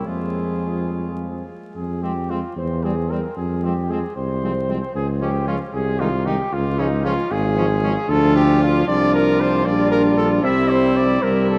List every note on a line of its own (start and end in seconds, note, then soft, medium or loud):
0.06 1.45 F2 medium
0.06 1.45 F3 soft
0.06 1.48 G#3 soft
0.06 1.48 F4 soft
0.06 1.45 G#4 medium
1.76 2.43 F2 medium
1.76 2.05 G#4 medium
2.03 2.12 F3 soft
2.03 2.12 G#3 medium
2.03 2.12 C4 medium
2.03 2.32 G4 medium
2.29 2.39 F3 soft
2.29 2.39 G#3 soft
2.29 2.39 C4 medium
2.29 2.56 F4 medium
2.56 3.24 E2 medium
2.56 2.85 C5 medium
2.83 2.93 G3 medium
2.83 2.94 G3 soft
2.83 2.94 C4 soft
2.83 3.12 G#4 medium
3.10 3.20 G3 soft
3.10 3.20 G3 medium
3.10 3.20 C4 medium
3.10 3.36 A#4 medium
3.36 4.03 F2 medium
3.36 3.65 G#4 medium
3.63 3.73 F3 medium
3.63 3.73 G#3 medium
3.63 3.73 C4 medium
3.63 3.92 G4 medium
3.90 4.00 F3 soft
3.90 3.99 G#3 medium
3.90 3.99 C4 medium
3.90 4.15 G#4 medium
4.16 4.82 C2 medium
4.16 4.93 C5 medium
4.42 4.52 F3 medium
4.42 4.52 G#3 medium
4.42 4.53 C4 medium
4.69 4.78 F3 medium
4.69 4.78 G#3 medium
4.69 4.79 C4 medium
4.95 5.60 C#2 medium
4.95 5.07 G#4 medium
5.20 5.30 F3 medium
5.20 5.30 G#3 medium
5.20 5.30 C#4 medium
5.20 5.47 G4 medium
5.47 5.56 F3 medium
5.47 5.57 G#3 medium
5.47 5.56 C#4 medium
5.47 5.59 F4 medium
5.73 6.39 C2 medium
5.73 6.01 G#4 medium
5.99 6.09 D#3 medium
5.99 6.09 G#3 medium
5.99 6.09 D#4 medium
5.99 6.27 F4 loud
6.25 6.35 D#3 medium
6.25 6.36 G#3 medium
6.25 6.35 D#4 medium
6.25 6.54 G4 loud
6.52 7.17 C#2 medium
6.52 6.81 F4 loud
6.78 6.88 F3 medium
6.78 6.88 G#3 medium
6.78 6.87 C#4 medium
6.78 7.04 D#4 loud
7.04 7.14 F3 medium
7.04 7.14 G#3 medium
7.04 7.14 C#4 medium
7.04 7.33 F4 loud
7.31 7.96 G#1 medium
7.31 8.11 G#4 loud
7.56 7.66 F3 medium
7.56 7.66 G#3 medium
7.56 7.66 C#4 medium
7.83 7.92 F3 medium
7.83 7.92 G#3 medium
7.83 7.93 C#4 medium
8.08 8.83 D2 medium
8.08 8.84 F3 medium
8.08 8.84 D4 loud
8.08 8.84 F4 medium
8.08 8.35 A4 loud
8.35 8.61 G4 loud
8.62 8.87 F4 loud
8.87 9.67 C2 medium
8.87 9.64 F3 medium
8.87 9.64 D4 medium
8.87 9.64 F4 medium
8.87 9.13 D5 loud
9.14 9.42 A#4 loud
9.40 9.67 C5 loud
9.66 10.43 A#1 medium
9.66 10.42 G3 medium
9.66 10.45 D4 medium
9.66 10.45 F4 medium
9.66 9.91 D5 loud
9.91 10.03 A#4 loud
10.17 10.29 A4 loud
10.43 11.21 C2 medium
10.43 11.21 G3 medium
10.43 11.22 C4 medium
10.43 11.22 E4 medium
10.43 10.72 E5 loud
10.70 10.98 C5 loud
10.96 11.24 D5 loud
11.22 11.59 C2 medium
11.22 11.59 G3 medium
11.22 11.59 C4 medium
11.22 11.59 E4 medium
11.22 11.49 A#4 loud
11.49 11.59 A4 loud